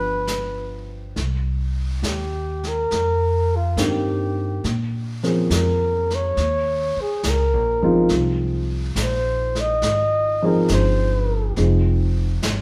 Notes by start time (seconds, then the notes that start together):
Already playing: G1 F3 G3 B3 D4 G4 B4
0.27 snare, hi-hat pedal
1.16 C2, brush sweep, snare
2.02 D#2, snare, hi-hat pedal
2.07 G4
2.63 snare
2.68 A#4
2.91 F2, brush sweep, snare
3.56 F4
3.77 G2 D#3 A#3 C4 D4 G4, snare, hi-hat pedal
3.84 G4
4.64 A#2, brush sweep, snare
5.23 F3 A#3 C4 C#4 G#4, snare
5.50 F2, snare, hi-hat pedal
5.56 A#4
6.10 snare
6.15 C#5
6.37 D#2, brush sweep, snare
6.97 muted upright bass stroke
7.01 G#4
7.23 C#2, snare, hi-hat pedal
7.29 A#4
7.53 A#1
7.83 G1 F3 G#3 C4 D#4 F4
8.09 C2, brush sweep, snare
8.96 A#1, snare, hi-hat pedal
9.02 C5
9.55 snare
9.60 D#5
9.82 G#1, brush sweep, snare
10.42 F3 G#3 C4 D#4 G#4 A#4
10.68 G1, snare, hi-hat pedal
10.73 C5
11.56 F1 F3 G#3 C4 D#4 G#4, brush sweep, snare
12.42 G#1, snare, hi-hat pedal